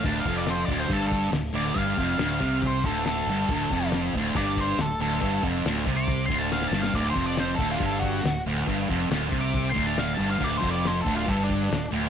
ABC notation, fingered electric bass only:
X:1
M:4/4
L:1/8
Q:1/4=139
K:Clyd
V:1 name="Fingered electric bass" clef=bass
D,,, =F,,,2 D,,, G,,,2 D,,, D,,, | G,,, =F,,, D,,, C,,2 D,,,2 G,,, | D,,, =F,,,2 D,,, G,,,2 D,,, D,,, | G,,, =F,,, D,,, C,,2 D,,,2 G,,, |
D,,, =F,,,2 D,,, G,,,2 D,,, D,,, | G,,, =F,,, D,,, C,,2 D,,,2 G,,, | D,,, =F,,,2 D,,, G,,,2 D,,, D,,, |]